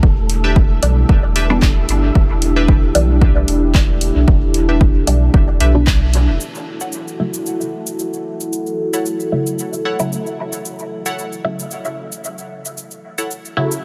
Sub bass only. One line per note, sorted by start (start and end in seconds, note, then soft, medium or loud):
0.03 0.79 E1 loud
0.83 1.04 B1 medium
1.09 1.85 E1 loud
1.89 2.11 G1 medium
2.15 2.91 E1 loud
2.95 3.44 B1 medium
3.48 4.11 E1 medium
4.16 4.25 B1 medium
4.28 5.04 E1 loud
5.07 5.29 B1 medium
5.34 5.60 E1 loud
5.60 6.29 B1 loud
6.28 6.38 E1 medium